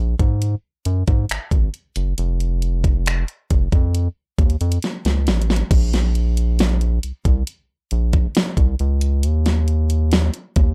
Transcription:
Already playing: analog synth bass A#1
0.19 analog synth bass G#2, kick, closed hi-hat
0.42 closed hi-hat
0.85 analog synth bass F#2, closed hi-hat
1.07 analog synth bass G#2, kick, closed hi-hat
1.29 analog synth bass G#1, finger snap, closed hi-hat
1.51 analog synth bass G#1, kick, closed hi-hat
1.74 closed hi-hat
1.96 analog synth bass F#1, closed hi-hat
2.18 analog synth bass F1, closed hi-hat
2.40 closed hi-hat
2.62 closed hi-hat
2.84 kick, closed hi-hat
3.06 finger snap, closed hi-hat
3.28 closed hi-hat
3.50 analog synth bass F1, kick, closed hi-hat
3.72 analog synth bass F2, kick, closed hi-hat
3.95 closed hi-hat
4.39 analog synth bass D#2, kick, closed hi-hat
4.50 closed hi-hat
4.61 analog synth bass F2, closed hi-hat
4.72 closed hi-hat
4.82 snare, closed hi-hat
5.05 analog synth bass C#2, snare, closed hi-hat
5.27 analog synth bass A1, snare, closed hi-hat
5.42 closed hi-hat
5.50 snare
5.56 closed hi-hat
5.71 analog synth bass A#1, kick, closed hi-hat, crash
5.93 snare, closed hi-hat
6.15 closed hi-hat
6.37 closed hi-hat
6.59 snare, closed hi-hat
6.81 closed hi-hat
7.03 analog synth bass C2, closed hi-hat
7.25 analog synth bass C2, kick, closed hi-hat
7.47 closed hi-hat
7.91 analog synth bass A#1, closed hi-hat
8.13 kick, closed hi-hat
8.35 snare, closed hi-hat
8.57 analog synth bass C2, kick, closed hi-hat
8.79 analog synth bass C#2, closed hi-hat
9.01 closed hi-hat
9.23 analog synth bass D#2, closed hi-hat
9.46 snare, closed hi-hat
9.68 closed hi-hat
9.90 closed hi-hat
10.12 snare, closed hi-hat
10.34 closed hi-hat
10.56 analog synth bass D#2, kick, closed hi-hat

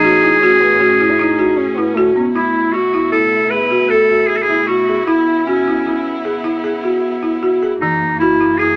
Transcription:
Already playing: string section A2 A3 C#4, french horn D#4, clarinet G#4
0.04 marimba F#4
0.23 marimba E4
0.41 french horn C#4, marimba F#4
0.61 french horn B3
0.80 french horn C#4, marimba F#4
1.01 marimba E4
1.12 french horn E4
1.20 french horn D#4, marimba E4
1.39 marimba F#4
1.58 french horn C#4
1.77 french horn B3, marimba E4
1.95 french horn A3, marimba F#4
2.14 marimba B3, french horn C#4
2.34 string section B2 A3 E4, clarinet E4, marimba E4
2.72 clarinet F#4, marimba F#4
2.94 marimba E4
3.12 marimba E4, clarinet A4
3.50 marimba G#4, clarinet B4
3.71 marimba F#4
3.89 clarinet A4, marimba A4
4.10 marimba F#4
4.27 clarinet G#4
4.36 clarinet A4
4.42 clarinet G#4
4.49 marimba E4
4.67 clarinet F#4, marimba F#4
4.89 marimba G#4
5.07 string section C#3 B3, clarinet E4, marimba E4
5.46 clarinet C#4, marimba F#4
5.68 marimba E4
5.87 marimba E4
6.25 marimba G#4
6.44 marimba E4
6.64 marimba G#4
6.84 marimba F#4
7.23 marimba E4
7.43 marimba F#4
7.63 marimba G#4
7.80 string section F#2 E3 A#3, marimba E3, clarinet D#4
8.19 clarinet E4, marimba F#4
8.41 marimba E4
8.58 marimba E4, clarinet G#4

